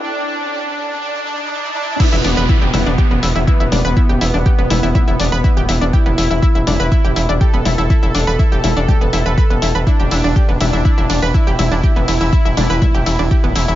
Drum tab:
CC |--------|x-------|--------|--------|
RD |--------|--------|--------|--------|
HH |--------|-o-o-o-o|-o-o-o-o|-o-o-o-o|
CG |--------|---O---O|---OO---|---O---O|
BD |--------|o-o-o-o-|o-o-o-o-|o-o-o-o-|

CC |--------|--------|--------|
RD |--------|-x-x-x-x|-x-x-x-x|
HH |-o-o-o-o|-o-o-o-o|-o-o-o-o|
CG |---OO---|---O---O|---OO---|
BD |o-o-o-o-|o-o-o-o-|o-o-o-o-|